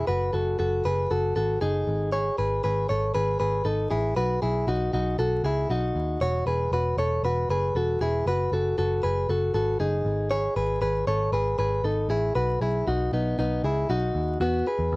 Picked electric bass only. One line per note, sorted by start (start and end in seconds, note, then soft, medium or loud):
0.08 0.29 F#1 loud
0.34 0.55 F#1 medium
0.60 0.81 F#1 medium
0.85 1.06 F#1 medium
1.11 1.32 F#1 loud
1.36 1.57 G#1 medium
1.62 1.83 F#1 medium
1.87 2.29 G#1 loud
2.39 2.59 G#1 medium
2.64 2.85 G#1 loud
2.90 3.11 G#1 loud
3.15 3.36 G#1 loud
3.40 3.61 G#1 medium
3.65 3.86 G#1 medium
3.91 4.12 A1 medium
4.17 4.38 B1 medium
4.43 4.64 B1 medium
4.67 4.89 B1 medium
4.94 5.15 B1 loud
5.19 5.40 B1 medium
5.44 5.65 C#2 medium
5.70 5.91 B1 medium
5.95 6.16 D#2 medium
6.21 6.42 E1 medium
6.46 6.67 E1 medium
6.72 6.93 E1 loud
6.97 7.19 E1 medium
7.23 7.45 E1 medium
7.49 7.70 F#1 medium
7.75 7.96 E1 medium
8.01 8.22 E1 medium
8.26 8.47 F#1 medium
8.52 8.73 F#1 medium
8.79 8.99 F#1 loud
9.04 9.25 F#1 medium
9.29 9.50 F#1 medium
9.54 9.75 G#1 medium
9.80 10.01 F#1 loud
10.05 10.47 G#1 medium
10.56 10.77 G#1 medium
10.81 11.03 G#1 loud
11.07 11.28 G#1 medium
11.32 11.54 G#1 loud
11.59 11.80 G#1 medium
11.84 12.05 G#1 medium
12.09 12.30 A1 medium
12.36 12.57 B1 medium
12.61 12.82 B1 medium
12.87 13.08 B1 medium
13.13 13.34 B1 loud
13.39 13.59 B1 medium
13.63 13.84 C#2 medium
13.89 14.10 B1 medium
14.15 14.36 D#2 medium
14.40 14.61 E2 loud
14.79 14.89 E2 medium
14.92 14.96 E2 loud